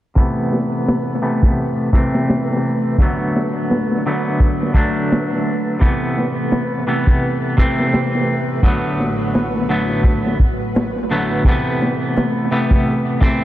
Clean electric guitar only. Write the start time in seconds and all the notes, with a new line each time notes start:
0.15 C3 E3 A3 B3
1.22 C3 E3 A3 B3
1.93 C3 E3 A3 C4
2.99 D3 F#3 A3 B3
4.06 D3 F#3 A3 B3
4.74 D3 F#3 A3 D4
5.79 C3 E3 A3 B3
6.87 C3 E3 A3 B3
7.57 C3 E3 A3 C4
8.63 D3 F#3 A3 B3
9.69 D3 F#3 A3 B3
11.11 D3 F#3 A3 B3
11.45 C3 E3 A3 B3
12.51 C3 E3 A3 B3
13.20 C3 E3 A3 C4